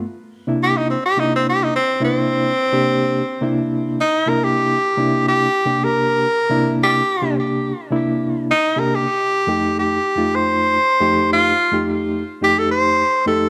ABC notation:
X:1
M:4/4
L:1/16
Q:"Swing 16ths" 1/4=107
K:Cmix
V:1 name="Tenor saxophone"
z4 G _E C G E C G E C2 C2- | C8- C2 z2 _E2 B G- | G4- G G4 B6- B | G4 z8 _E2 B G- |
G4- G G4 c6- c | F4 z4 G A c4 A2 |]
V:2 name="Reed electric piano"
z3 [C,B,DE]3 z2 [C,B,DE]4 z2 [C,B,DE]2- | [C,B,DE] z2 [C,B,DG]3 z2 [C,B,DE]4 z2 [C,B,DE]2- | [C,B,DE] z2 [C,B,DE]3 z2 [C,B,DG]4 z2 [C,B,DE]2- | [C,B,DE] z2 [C,B,DG]3 z2 [C,B,DE]4 z2 [C,B,DG]2 |
z3 [F,,A,_EG]3 z2 [F,,A,EF]4 z2 [F,,A,EG]2- | [F,,A,_EG] z2 [F,,A,EG]3 z2 [F,,A,EG]4 z2 [F,,A,EG]2 |]